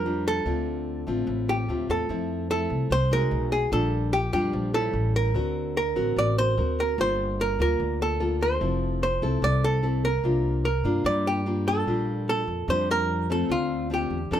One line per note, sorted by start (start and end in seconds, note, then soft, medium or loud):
0.00 0.42 F2 medium
0.00 0.44 F3 medium
0.00 0.23 A#4 medium
0.05 0.43 G3 soft
0.05 0.43 D4 soft
0.05 0.43 F4 medium
0.28 1.49 A4 medium
0.45 1.03 D2 medium
0.45 1.25 D3 soft
0.45 1.04 A3 medium
0.45 1.04 C4 soft
0.45 1.04 F4 medium
1.07 1.26 A1 medium
1.07 1.65 A3 medium
1.07 1.65 C4 medium
1.07 1.65 F4 medium
1.27 1.65 A1 medium
1.27 2.07 A2 soft
1.49 1.87 G4 medium
1.68 1.87 D2 medium
1.68 2.06 A3 medium
1.68 2.06 C4 medium
1.68 2.07 F4 medium
1.89 2.07 E2 medium
1.89 2.50 A4 medium
2.09 2.66 F2 medium
2.09 2.89 F3 soft
2.09 2.47 A3 medium
2.09 2.47 C4 medium
2.09 2.47 E4 medium
2.50 2.91 A3 medium
2.50 2.91 C4 medium
2.50 2.91 E4 medium
2.50 2.92 A4 medium
2.70 2.89 C2 medium
2.90 3.28 C2 medium
2.90 3.30 C3 medium
2.90 3.12 C5 loud
3.11 3.69 G#3 medium
3.11 3.69 D#4 soft
3.11 3.69 F#4 medium
3.11 3.52 A#4 medium
3.31 3.69 B1 medium
3.52 3.72 G#4 medium
3.71 4.29 A#1 medium
3.71 4.51 A#2 medium
3.71 4.12 G3 soft
3.71 4.12 D4 medium
3.71 4.13 F4 medium
3.71 4.13 A4 medium
4.13 4.32 G4 medium
4.33 4.52 F2 medium
4.33 4.70 G3 medium
4.33 4.70 D4 medium
4.33 4.71 F4 medium
4.33 4.74 G4 medium
4.53 4.91 A#1 medium
4.53 4.92 F3 medium
4.74 5.31 G3 medium
4.74 5.32 C#4 medium
4.74 5.32 E4 medium
4.74 5.16 A4 medium
4.93 5.32 A1 medium
5.16 5.76 A#4 medium
5.34 5.92 D2 medium
5.34 6.14 D3 medium
5.34 5.75 C4 medium
5.34 5.75 F#4 medium
5.34 5.76 A#4 medium
5.77 6.18 A#4 medium
5.96 6.15 A1 medium
5.96 6.53 C4 medium
5.96 6.54 F#4 medium
5.96 6.54 A#4 medium
6.16 6.54 A1 medium
6.16 6.55 A2 medium
6.16 6.38 D5 medium
6.38 6.79 C5 medium
6.57 6.95 D2 medium
6.57 6.95 C4 soft
6.57 6.95 F#4 medium
6.57 6.95 A#4 medium
6.80 6.98 A#4 medium
6.98 7.55 G1 medium
6.98 7.77 G3 soft
6.98 7.56 A#3 soft
6.98 7.56 F4 soft
6.98 7.56 A4 medium
6.98 7.41 C5 medium
7.41 7.61 A#4 medium
7.59 7.78 D2 medium
7.59 8.17 A#3 medium
7.59 8.17 F4 medium
7.59 8.02 A#4 medium
7.80 8.57 D2 medium
7.80 8.59 D3 soft
8.02 8.43 A4 medium
8.20 8.57 A#3 soft
8.20 8.57 F4 medium
8.20 8.58 A4 medium
8.42 9.02 C5 medium
8.61 9.18 F1 medium
8.61 9.40 F3 medium
8.61 9.01 C4 soft
8.61 9.01 E4 soft
8.61 9.01 A4 medium
9.03 9.44 C5 medium
9.22 9.41 C2 medium
9.22 9.80 C4 medium
9.22 9.80 E4 medium
9.22 9.80 A4 medium
9.42 10.19 C2 medium
9.42 10.21 C3 soft
9.42 9.64 D5 medium
9.64 10.04 A4 medium
9.83 10.09 C4 soft
9.83 10.09 E4 medium
9.83 10.09 A4 medium
10.05 10.64 A#4 medium
10.24 10.81 C2 medium
10.24 11.03 C3 medium
10.24 10.64 A#3 medium
10.24 10.64 D4 medium
10.24 10.65 F4 medium
10.65 11.03 A#4 medium
10.84 11.03 G2 medium
10.84 11.42 A#3 medium
10.84 11.43 D4 medium
10.84 11.43 F4 medium
11.04 11.82 G2 medium
11.04 11.85 G3 medium
11.04 11.26 D5 medium
11.27 11.67 G4 medium
11.46 11.83 A#3 medium
11.46 11.83 D4 soft
11.46 11.84 F4 medium
11.68 12.28 A4 medium
11.86 12.43 A#1 medium
11.86 12.66 A#2 medium
11.86 12.41 G3 medium
11.86 12.42 D4 medium
11.86 12.42 F4 medium
12.29 12.70 A4 medium
12.47 12.66 F2 medium
12.68 13.45 F2 loud
12.68 13.47 F3 soft
12.68 13.26 G3 medium
12.68 13.26 D4 soft
12.68 13.26 F4 medium
12.68 12.90 C5 medium
12.91 13.31 A#4 medium
13.30 13.87 A3 medium
13.30 13.87 C4 medium
13.30 13.88 F4 medium
13.30 13.51 A4 medium
13.49 14.06 D2 medium
13.49 14.29 D3 medium
13.49 13.88 F4 medium
13.90 14.17 A3 medium
13.90 14.18 C4 medium
13.90 14.18 F4 medium
13.90 14.34 G4 medium
14.10 14.29 E2 medium
14.31 14.40 F2 medium
14.31 14.40 F3 medium
14.31 14.40 C4 medium
14.31 14.40 D4 medium
14.31 14.40 A4 medium